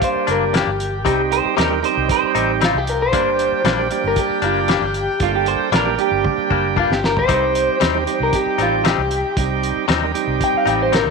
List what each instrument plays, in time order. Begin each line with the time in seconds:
Already playing: tonewheel organ G3 A#3 D4 G4, horn section G4 A#4 D5 G5
0.02 clean electric guitar C5, kick, closed hi-hat
0.15 muted fingered electric bass stroke
0.27 fingered electric bass F#1, clean electric guitar G3 A#3 D4, closed hi-hat
0.31 clean electric guitar A#4
0.53 clean electric guitar G2 G3 A#3 D4 G4, snare, closed hi-hat
0.67 fingered electric bass G1
0.80 closed hi-hat
1.05 fingered electric bass C2, clean electric guitar C3 G3 C4 D#4, tonewheel organ G3 C4 D#4 G4, horn section D#4 C5 D#5, kick, closed hi-hat
1.32 clean electric guitar C5, closed hi-hat
1.45 muted fingered electric bass stroke
1.57 fingered electric bass D#2, clean electric guitar C3 G3 C4 D#4 A#4, snare, closed hi-hat
1.70 tonewheel organ G3 C4 D#4 G4
1.83 tonewheel organ G3 C4 D#4 G4, clean electric guitar C5, closed hi-hat
1.97 fingered electric bass C2
2.09 clean electric guitar C5, kick, closed hi-hat
2.23 muted fingered electric bass stroke
2.35 fingered electric bass A1, clean electric guitar G3 C4 D#4, closed hi-hat
2.61 clean electric guitar C3 G3 C4 D#4 F4, snare, closed hi-hat
2.74 fingered electric bass C2, clean electric guitar G4
2.87 clean electric guitar A#4, closed hi-hat
3.02 clean electric guitar C5
3.12 fingered electric bass G1, clean electric guitar G2 G3 A#3 D4, tonewheel organ G3 A#3 D4 G4, horn section A#3 D4 D5, kick, closed hi-hat
3.39 closed hi-hat
3.52 muted fingered electric bass stroke
3.64 fingered electric bass A#1, clean electric guitar G2 G3 A#3 D4, snare, closed hi-hat
3.79 tonewheel organ G3 A#3 D4 G4
3.91 tonewheel organ G3 A#3 D4 G4, closed hi-hat
4.04 fingered electric bass G1, clean electric guitar A#4
4.16 clean electric guitar G4, kick, closed hi-hat
4.30 muted fingered electric bass stroke
4.42 fingered electric bass F#1, clean electric guitar G3 A#3 D4 F4, closed hi-hat
4.68 clean electric guitar G2 G3 A#3 D4 G4, snare, closed hi-hat
4.82 fingered electric bass G1
4.94 closed hi-hat
5.20 fingered electric bass G1, tonewheel organ G3 A#3 D4 A4, horn section C4 C5, clean electric guitar F4, kick, closed hi-hat
5.35 clean electric guitar G4
5.46 clean electric guitar C5, closed hi-hat
5.72 fingered electric bass A#1, clean electric guitar G2 G3 A#3 D4 A#4, snare, closed hi-hat
5.85 tonewheel organ G3 A#3 D4 G4
5.98 tonewheel organ G3 A#3 D4 G4, clean electric guitar G4, closed hi-hat
6.11 fingered electric bass G1
6.24 kick, high tom
6.38 muted fingered electric bass stroke
6.50 fingered electric bass F#1, clean electric guitar G3 A#3 D4, kick
6.76 clean electric guitar G2 G3 A#3 D4 F4, kick
6.90 fingered electric bass G1, clean electric guitar G4, snare
7.04 clean electric guitar A#4, snare
7.17 clean electric guitar C5, floor tom
7.28 fingered electric bass C2, clean electric guitar C3 G3 C4 D#4, tonewheel organ G3 C4 D#4 G4, horn section D#4 D#5, kick, closed hi-hat
7.55 closed hi-hat
7.68 muted fingered electric bass stroke
7.80 fingered electric bass D#2, clean electric guitar C3 G3 C4 D#4, snare, closed hi-hat
7.95 tonewheel organ G3 C4 D#4 G4
8.07 tonewheel organ G3 C4 D#4 G4, closed hi-hat
8.20 fingered electric bass C2, clean electric guitar A#4
8.33 clean electric guitar G4, kick, closed hi-hat
8.46 muted fingered electric bass stroke
8.58 fingered electric bass A1, clean electric guitar G3 C4 D#4, closed hi-hat
8.62 clean electric guitar F4
8.84 clean electric guitar C3 G3 C4 D#4 G4, snare, closed hi-hat
8.98 fingered electric bass C2
9.11 closed hi-hat
9.37 fingered electric bass C2, tonewheel organ G3 C4 D#4 G4, kick, closed hi-hat
9.63 closed hi-hat
9.76 muted fingered electric bass stroke
9.88 fingered electric bass D#2, clean electric guitar C3 G3 C4 D#4, snare, closed hi-hat
10.03 tonewheel organ G3 C4 D#4 A#4
10.14 tonewheel organ G3 C4 D#4 G4, closed hi-hat
10.27 fingered electric bass C2
10.41 clean electric guitar G5, kick, closed hi-hat
10.54 clean electric guitar F5, muted fingered electric bass stroke
10.66 fingered electric bass A1, clean electric guitar G3 C4 D#4 G5, closed hi-hat
10.82 clean electric guitar C5
10.92 clean electric guitar C3 G3 C4 D#4 A#4, snare, closed hi-hat
11.06 fingered electric bass D2